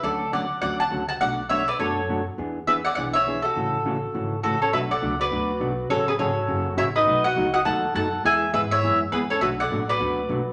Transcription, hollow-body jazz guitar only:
X:1
M:4/4
L:1/8
Q:"Swing" 1/4=205
K:Bdor
V:1 name="Hollow-body jazz guitar"
[D,F,A,CF] z [D,F,A,CF] z [D,F,A,CF] z [D,F,A,CF] z | [B,,F,A,DF] z [B,,F,A,DF] z [B,,F,A,DF] z [B,,F,A,DF] z | [E,B,DG] z [E,B,DG] z [E,B,DG] z [E,B,DG] z | [C,E,A,CF] z [C,E,A,CF] z [C,E,A,CF] z [C,E,A,CF] z |
[B,,F,A,DF] z [B,,F,A,DF] z [B,,F,A,DF] z [B,,F,A,DF] z | [C,F,CFG] z [C,F,CFG] z [C,F,CFG] z [C,F,CFG] z | [B,,F,A,^DF] z [B,,F,A,DF] z [B,,F,A,DF] z [B,,F,A,DF] z | [E,G,B,EG] z [E,G,B,EG] z [E,G,B,EG] z [E,G,B,EG] z |
[B,,F,A,DF] z [B,,F,A,DF] z [B,,F,A,DF] z [B,,F,A,DF] z |]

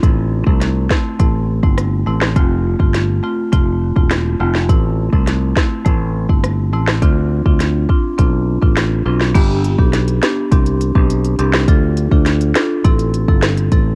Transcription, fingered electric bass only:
X:1
M:4/4
L:1/16
Q:1/4=103
K:Am
V:1 name="Fingered electric bass" clef=bass
A,,,3 C,,3 z2 A,,,3 G,,,3 A,,,2 | F,,,3 G,,,3 z2 F,,,3 E,,,3 F,,,2 | A,,,3 C,,3 z2 A,,,3 G,,,3 A,,,2 | D,,3 D,,3 z2 B,,,3 A,,,3 B,,,2 |
G,,,3 B,,,3 z2 C,,3 B,,,3 C,,2 | D,,3 D,,3 z2 A,,,3 G,,,3 A,,,2 |]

